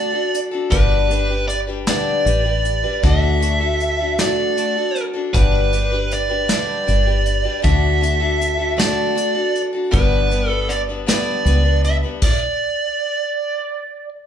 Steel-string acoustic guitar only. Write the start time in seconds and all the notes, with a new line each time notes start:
Already playing: A3 D4 F#4 A4
0.12 D4 F#4 A4
0.51 D4 F#4 A4
0.70 G2 D3 G3 D4 G4 B4
1.09 G3 D4 G4 B4
1.29 G3 D4 G4 B4
1.67 G3 D4 G4 B4
1.87 G2 D3 G3 D4 G4 B4
2.25 G3 D4 G4 B4
2.44 G3 D4 G4 B4
2.84 G3 D4 G4 B4
3.03 D3 A3 D4 F#4 A4
3.40 A3 D4 F#4 A4
3.60 D4 F#4 A4
3.99 D4 F#4 A4
4.18 D3 A3 D4 F#4 A4
4.57 A3 D4 F#4 A4
4.76 D4 F#4 A4
5.14 D4 F#4 A4
5.33 G2 D3 G3 D4 G4 B4
5.72 G3 D4 G4 B4
5.92 G3 D4 G4 B4
6.29 G3 D4 G4 B4
6.48 G2 D3 G3 D4 G4 B4
6.87 G3 D4 G4 B4
7.06 G3 D4 G4 B4
7.44 G3 D4 G4 B4
7.62 D3 A3 D4 F#4 A4
8.01 A3 D4 F#4 A4
8.20 D4 F#4 A4
8.57 D4 F#4 A4
8.77 D3 A3 D4 F#4 A4
9.15 A3 D4 F#4 A4
9.35 D4 F#4 A4
9.73 D4 F#4 A4
9.91 G2 D3 G3 B3 D4 B4
10.30 G3 B3 D4 B4
10.49 G3 B3 D4 B4
10.89 G3 B3 D4 B4
11.06 G2 D3 G3 B3 D4 B4
11.45 G3 B3 D4 B4
11.64 G3 B3 D4 B4
12.03 G3 B3 D4 B4